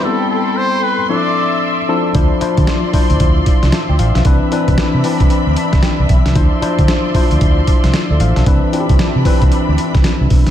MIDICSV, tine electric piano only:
0, 0, Header, 1, 2, 480
1, 0, Start_track
1, 0, Tempo, 526316
1, 38, Time_signature, 4, 2, 24, 8
1, 9580, End_track
2, 0, Start_track
2, 0, Title_t, "Tine electric piano"
2, 0, Program_c, 0, 4
2, 0, Control_c, 0, 64, 127
2, 40, Note_on_c, 0, 55, 79
2, 41, Note_on_c, 0, 59, 74
2, 44, Note_on_c, 0, 60, 80
2, 46, Note_on_c, 0, 64, 78
2, 48, Control_c, 0, 64, 0
2, 49, Note_on_c, 0, 69, 97
2, 216, Control_c, 0, 64, 127
2, 878, Note_off_c, 0, 55, 0
2, 879, Note_off_c, 0, 59, 0
2, 880, Note_off_c, 0, 60, 0
2, 881, Note_off_c, 0, 64, 0
2, 883, Note_off_c, 0, 69, 0
2, 997, Note_on_c, 0, 53, 76
2, 999, Note_on_c, 0, 60, 70
2, 1002, Note_on_c, 0, 62, 69
2, 1004, Note_on_c, 0, 64, 74
2, 1008, Note_on_c, 0, 69, 81
2, 1011, Control_c, 0, 64, 0
2, 1146, Control_c, 0, 64, 127
2, 1636, Note_off_c, 0, 53, 0
2, 1637, Note_off_c, 0, 60, 0
2, 1638, Note_off_c, 0, 62, 0
2, 1640, Note_off_c, 0, 64, 0
2, 1641, Note_off_c, 0, 69, 0
2, 1719, Note_on_c, 0, 53, 96
2, 1722, Note_on_c, 0, 60, 85
2, 1724, Note_on_c, 0, 62, 86
2, 1725, Note_on_c, 0, 64, 84
2, 1728, Note_on_c, 0, 69, 107
2, 1931, Note_off_c, 0, 53, 0
2, 1933, Note_off_c, 0, 60, 0
2, 1934, Note_off_c, 0, 62, 0
2, 1934, Note_off_c, 0, 64, 0
2, 1936, Note_off_c, 0, 69, 0
2, 1957, Note_on_c, 0, 53, 93
2, 1959, Note_on_c, 0, 62, 81
2, 1964, Note_on_c, 0, 64, 84
2, 1966, Note_on_c, 0, 72, 106
2, 1972, Control_c, 0, 64, 0
2, 2140, Control_c, 0, 64, 127
2, 2171, Note_off_c, 0, 53, 0
2, 2172, Note_off_c, 0, 62, 0
2, 2174, Note_off_c, 0, 64, 0
2, 2175, Note_off_c, 0, 72, 0
2, 2196, Note_on_c, 0, 53, 97
2, 2200, Note_on_c, 0, 62, 87
2, 2203, Note_on_c, 0, 64, 85
2, 2208, Note_on_c, 0, 72, 101
2, 2623, Note_off_c, 0, 53, 0
2, 2625, Note_off_c, 0, 62, 0
2, 2626, Note_off_c, 0, 64, 0
2, 2629, Note_off_c, 0, 72, 0
2, 2675, Note_on_c, 0, 53, 91
2, 2677, Note_on_c, 0, 62, 84
2, 2682, Note_on_c, 0, 64, 86
2, 2686, Note_on_c, 0, 72, 97
2, 3162, Note_off_c, 0, 72, 0
2, 3400, Note_on_c, 0, 81, 55
2, 3406, Note_on_c, 0, 76, 48
2, 3516, Note_off_c, 0, 53, 0
2, 3517, Note_off_c, 0, 62, 0
2, 3519, Note_off_c, 0, 64, 0
2, 3541, Note_off_c, 0, 81, 0
2, 3544, Note_off_c, 0, 76, 0
2, 3549, Note_on_c, 0, 79, 70
2, 3554, Note_on_c, 0, 74, 60
2, 3635, Note_off_c, 0, 79, 0
2, 3637, Note_off_c, 0, 74, 0
2, 3639, Note_on_c, 0, 77, 73
2, 3646, Note_on_c, 0, 72, 60
2, 3781, Note_off_c, 0, 77, 0
2, 3784, Note_off_c, 0, 72, 0
2, 3792, Note_on_c, 0, 76, 59
2, 3799, Note_on_c, 0, 71, 50
2, 3877, Note_off_c, 0, 71, 0
2, 3878, Note_on_c, 0, 52, 96
2, 3880, Note_on_c, 0, 60, 85
2, 3885, Note_on_c, 0, 62, 85
2, 3888, Note_on_c, 0, 71, 104
2, 3891, Control_c, 0, 64, 0
2, 4018, Note_off_c, 0, 76, 0
2, 4027, Control_c, 0, 64, 127
2, 4091, Note_off_c, 0, 52, 0
2, 4092, Note_off_c, 0, 60, 0
2, 4094, Note_off_c, 0, 62, 0
2, 4096, Note_off_c, 0, 71, 0
2, 4120, Note_on_c, 0, 52, 100
2, 4123, Note_on_c, 0, 60, 89
2, 4126, Note_on_c, 0, 62, 90
2, 4130, Note_on_c, 0, 71, 105
2, 4545, Note_off_c, 0, 52, 0
2, 4546, Note_off_c, 0, 60, 0
2, 4548, Note_off_c, 0, 62, 0
2, 4549, Note_off_c, 0, 71, 0
2, 4598, Note_on_c, 0, 52, 88
2, 4602, Note_on_c, 0, 60, 83
2, 4605, Note_on_c, 0, 62, 88
2, 4610, Note_on_c, 0, 74, 96
2, 5082, Note_on_c, 0, 81, 72
2, 5303, Note_off_c, 0, 81, 0
2, 5320, Note_on_c, 0, 79, 68
2, 5437, Note_off_c, 0, 52, 0
2, 5439, Note_off_c, 0, 60, 0
2, 5440, Note_off_c, 0, 62, 0
2, 5443, Note_off_c, 0, 74, 0
2, 5542, Note_off_c, 0, 79, 0
2, 5559, Note_on_c, 0, 76, 76
2, 5782, Note_off_c, 0, 76, 0
2, 5792, Note_on_c, 0, 53, 85
2, 5796, Note_on_c, 0, 62, 83
2, 5798, Note_on_c, 0, 64, 85
2, 5803, Note_on_c, 0, 72, 102
2, 5811, Control_c, 0, 64, 0
2, 5947, Control_c, 0, 64, 127
2, 6008, Note_off_c, 0, 53, 0
2, 6010, Note_off_c, 0, 62, 0
2, 6011, Note_off_c, 0, 64, 0
2, 6013, Note_off_c, 0, 72, 0
2, 6032, Note_on_c, 0, 53, 93
2, 6036, Note_on_c, 0, 62, 90
2, 6039, Note_on_c, 0, 64, 84
2, 6043, Note_on_c, 0, 72, 104
2, 6461, Note_off_c, 0, 53, 0
2, 6463, Note_off_c, 0, 62, 0
2, 6464, Note_off_c, 0, 64, 0
2, 6466, Note_off_c, 0, 72, 0
2, 6516, Note_on_c, 0, 53, 92
2, 6520, Note_on_c, 0, 62, 83
2, 6523, Note_on_c, 0, 64, 81
2, 6528, Note_on_c, 0, 72, 99
2, 7003, Note_off_c, 0, 72, 0
2, 7356, Note_off_c, 0, 53, 0
2, 7358, Note_off_c, 0, 62, 0
2, 7360, Note_off_c, 0, 64, 0
2, 7395, Note_on_c, 0, 74, 68
2, 7402, Note_on_c, 0, 69, 54
2, 7478, Note_off_c, 0, 74, 0
2, 7481, Note_off_c, 0, 69, 0
2, 7484, Note_on_c, 0, 77, 81
2, 7490, Note_on_c, 0, 72, 64
2, 7623, Note_off_c, 0, 77, 0
2, 7626, Note_off_c, 0, 72, 0
2, 7632, Note_on_c, 0, 81, 59
2, 7638, Note_on_c, 0, 76, 50
2, 7719, Note_on_c, 0, 52, 90
2, 7723, Note_on_c, 0, 60, 84
2, 7726, Note_on_c, 0, 62, 85
2, 7728, Control_c, 0, 64, 0
2, 7731, Note_on_c, 0, 71, 100
2, 7858, Note_off_c, 0, 81, 0
2, 7861, Note_off_c, 0, 76, 0
2, 7870, Control_c, 0, 64, 127
2, 7931, Note_off_c, 0, 52, 0
2, 7933, Note_off_c, 0, 60, 0
2, 7935, Note_off_c, 0, 62, 0
2, 7937, Note_off_c, 0, 71, 0
2, 7957, Note_on_c, 0, 52, 91
2, 7962, Note_on_c, 0, 60, 90
2, 7966, Note_on_c, 0, 62, 90
2, 7969, Note_on_c, 0, 65, 88
2, 8025, Note_on_c, 0, 67, 102
2, 8035, Note_off_c, 0, 65, 0
2, 8383, Note_off_c, 0, 52, 0
2, 8385, Note_off_c, 0, 60, 0
2, 8388, Note_off_c, 0, 62, 0
2, 8417, Note_off_c, 0, 67, 0
2, 8441, Note_on_c, 0, 52, 88
2, 8442, Note_on_c, 0, 60, 88
2, 8448, Note_on_c, 0, 62, 75
2, 8451, Note_on_c, 0, 71, 103
2, 9279, Note_off_c, 0, 52, 0
2, 9279, Note_off_c, 0, 60, 0
2, 9282, Note_off_c, 0, 62, 0
2, 9284, Note_off_c, 0, 71, 0
2, 9580, End_track
0, 0, End_of_file